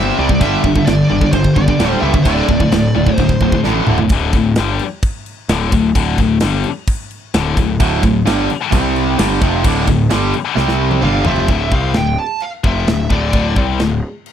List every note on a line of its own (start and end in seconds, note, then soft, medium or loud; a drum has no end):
0.00 0.10 G1 loud
0.00 0.17 C3 loud
0.00 0.17 G3 loud
0.00 0.17 C4 loud
0.00 0.20 E5 loud
0.18 0.42 C2 loud
0.18 0.29 C3 loud
0.18 0.29 G3 loud
0.18 0.29 C4 medium
0.18 0.42 D5 loud
0.29 0.40 C3 medium
0.29 0.40 G3 medium
0.29 kick medium
0.40 0.55 G1 loud
0.40 0.63 G2 medium
0.40 0.63 D3 loud
0.40 0.63 G3 medium
0.40 0.89 E5 loud
0.40 kick loud
0.40 crash medium
0.64 0.79 G1 medium
0.64 0.74 G2 medium
0.64 0.74 D3 medium
0.64 kick medium
0.76 0.86 G2 medium
0.76 0.86 D3 medium
0.76 kick medium
0.86 1.02 G1 loud
0.86 1.08 G2 medium
0.86 1.08 D3 loud
0.86 1.07 D5 loud
0.86 snare loud
0.86 crash medium
1.08 1.25 G1 medium
1.08 1.20 G2 medium
1.08 1.20 D3 medium
1.08 1.32 D5 loud
1.21 1.32 G2 medium
1.21 1.32 D3 medium
1.21 kick medium
1.32 1.48 G1 loud
1.32 1.54 G2 medium
1.32 1.54 D3 medium
1.32 1.54 C5 medium
1.32 kick loud
1.32 crash medium
1.44 kick medium
1.54 1.71 G1 loud
1.54 1.68 G2 medium
1.54 1.67 D3 medium
1.54 1.98 D5 loud
1.54 kick medium
1.68 1.79 G2 medium
1.68 1.79 D3 medium
1.68 kick loud
1.79 1.94 D1 loud
1.79 2.01 G2 loud
1.79 2.02 D3 loud
1.79 2.02 G3 loud
1.79 snare loud
1.79 crash medium
2.01 2.17 C#2 loud
2.01 2.13 G2 medium
2.01 2.13 D3 medium
2.01 2.14 G3 loud
2.01 2.23 E5 medium
2.14 2.26 G2 medium
2.14 2.26 D3 medium
2.14 kick loud
2.24 2.40 D1 loud
2.24 2.48 D2 medium
2.24 2.48 A2 medium
2.24 2.48 D3 loud
2.24 3.15 D5 loud
2.24 kick loud
2.24 crash medium
2.49 2.63 D1 medium
2.49 2.60 D2 medium
2.49 2.59 A2 medium
2.49 kick medium
2.60 2.71 D2 medium
2.60 2.71 A2 medium
2.60 kick medium
2.72 2.87 D1 medium
2.72 2.93 D2 medium
2.72 2.93 A2 medium
2.72 snare loud
2.72 crash medium
2.95 3.10 D1 loud
2.95 3.07 D2 medium
2.95 3.06 A2 medium
3.06 3.18 D2 medium
3.06 3.19 A2 medium
3.06 kick medium
3.15 3.32 D1 loud
3.15 3.59 C5 loud
3.15 kick medium
3.15 crash medium
3.19 3.39 D2 medium
3.19 3.40 A2 loud
3.29 kick loud
3.41 3.55 D1 medium
3.41 3.53 D2 medium
3.41 3.53 A2 medium
3.41 kick medium
3.52 3.64 D2 medium
3.52 3.65 A2 medium
3.52 kick loud
3.64 3.79 A1 medium
3.64 3.87 D2 loud
3.64 3.87 A2 medium
3.64 3.87 D3 loud
3.64 snare medium
3.75 high tom medium
3.87 4.02 D1 medium
3.87 3.98 D2 loud
3.87 3.98 A2 loud
3.87 3.99 D3 loud
3.87 mid tom loud
3.98 4.11 D2 medium
3.98 4.11 A2 medium
3.98 floor tom loud
4.09 4.32 D1 medium
4.09 4.34 D2 medium
4.09 4.34 A2 medium
4.09 kick loud
4.09 crash medium
4.13 4.34 D3 loud
4.33 4.55 D1 medium
4.33 4.53 D2 medium
4.33 4.53 A2 medium
4.33 kick loud
4.33 crash medium
4.55 4.79 G1 medium
4.55 4.80 G2 loud
4.55 4.80 D3 loud
4.55 4.80 G3 loud
4.55 snare loud
4.55 crash medium
4.79 crash medium
5.03 kick loud
5.03 crash medium
5.26 crash medium
5.49 5.71 D1 loud
5.49 5.71 D2 loud
5.49 5.71 A2 loud
5.49 5.72 D3 loud
5.49 snare loud
5.49 crash loud
5.72 5.94 D1 medium
5.72 5.91 D2 medium
5.72 5.91 A2 medium
5.72 kick loud
5.72 crash medium
5.95 6.17 D1 medium
5.95 6.18 D2 loud
5.95 6.18 A2 medium
5.95 6.18 D3 loud
5.95 kick loud
5.95 crash loud
6.18 6.40 D1 medium
6.18 6.37 D2 medium
6.18 6.38 A2 medium
6.18 kick medium
6.18 crash medium
6.40 6.63 G1 loud
6.40 6.64 G2 loud
6.40 6.64 D3 loud
6.40 6.65 G3 loud
6.40 snare loud
6.40 crash medium
6.64 crash medium
6.88 kick loud
6.88 crash medium
7.11 crash medium
7.34 7.56 D1 loud
7.34 7.57 D2 medium
7.34 7.57 A2 loud
7.34 7.57 D3 loud
7.34 snare loud
7.34 crash medium
7.57 7.79 D1 medium
7.57 7.76 D2 medium
7.57 7.76 A2 medium
7.57 kick loud
7.57 crash medium
7.80 8.02 D1 loud
7.80 8.02 D2 medium
7.80 8.02 A2 medium
7.80 8.03 D3 loud
7.80 kick loud
7.80 crash medium
8.03 8.25 D1 medium
8.03 8.22 D2 medium
8.03 8.22 A2 medium
8.03 kick loud
8.03 crash medium
8.26 8.48 G1 medium
8.26 8.48 G2 loud
8.26 8.49 D3 loud
8.26 8.49 G3 loud
8.26 snare loud
8.26 crash medium
8.50 crash medium
8.72 9.16 C2 loud
8.72 9.18 C3 loud
8.72 9.19 G3 loud
8.72 9.19 C4 loud
8.72 kick loud
8.72 crash medium
8.96 crash medium
9.19 9.40 G1 loud
9.19 9.41 G2 loud
9.19 9.41 D3 loud
9.19 9.42 G3 loud
9.19 snare loud
9.19 crash loud
9.42 9.63 F1 loud
9.42 9.64 F2 medium
9.42 9.65 C3 medium
9.42 9.65 F3 loud
9.42 kick loud
9.42 crash medium
9.64 9.86 D1 medium
9.64 9.87 D2 loud
9.64 9.87 A2 loud
9.64 9.88 D3 loud
9.64 kick loud
9.64 crash loud
9.88 10.09 D1 medium
9.88 10.07 D2 medium
9.88 10.07 A2 medium
9.88 kick loud
9.88 crash medium
10.10 10.33 G1 loud
10.10 10.34 G2 medium
10.10 10.34 D3 loud
10.10 10.34 G3 loud
10.10 snare loud
10.10 crash medium
10.34 crash medium
10.56 11.00 C2 medium
10.56 11.02 C3 medium
10.56 11.02 G3 loud
10.56 11.03 C4 loud
10.56 snare medium
10.68 snare medium
10.91 high tom medium
11.02 11.24 G1 loud
11.02 11.25 G2 loud
11.02 11.26 D3 loud
11.02 11.26 G3 loud
11.02 11.26 F5 medium
11.02 mid tom medium
11.25 11.48 F1 loud
11.25 11.49 F2 medium
11.25 11.49 C3 loud
11.25 11.49 F3 loud
11.25 11.72 E5 medium
11.25 floor tom loud
11.36 floor tom loud
11.48 11.70 D1 medium
11.48 11.71 D2 medium
11.48 11.72 A2 loud
11.48 11.72 D3 loud
11.48 kick loud
11.48 china medium
11.72 11.94 C2 medium
11.72 11.94 C3 medium
11.72 11.95 G3 medium
11.72 11.95 C4 medium
11.72 11.96 F5 loud
11.72 kick loud
11.94 12.17 D1 medium
11.94 12.14 D2 medium
11.94 12.14 A2 medium
11.94 12.19 G5 medium
11.94 snare loud
11.94 china medium
12.19 12.43 A5 medium
12.40 12.48 F5 medium
12.40 china medium
12.64 12.86 F1 medium
12.64 12.87 F2 loud
12.64 12.87 C3 medium
12.64 12.87 F3 loud
12.64 13.12 E5 loud
12.64 kick loud
12.87 13.09 D1 medium
12.87 13.06 D2 medium
12.87 13.06 A2 medium
12.87 snare loud
12.87 china medium
13.10 13.32 D1 loud
13.10 13.31 D2 medium
13.10 13.32 A2 medium
13.10 13.33 D3 loud
13.10 13.54 D5 medium
13.10 kick loud
13.33 13.55 D1 medium
13.33 13.56 D2 medium
13.33 13.56 A2 medium
13.33 13.56 D3 loud
13.33 kick loud
13.33 china medium
13.56 13.78 C2 medium
13.56 13.79 C3 medium
13.56 13.80 G3 medium
13.56 13.80 C4 medium
13.56 kick loud
13.79 14.01 D1 medium
13.79 13.98 D2 medium
13.79 13.99 A2 medium
13.79 snare loud
13.79 china medium
14.26 china medium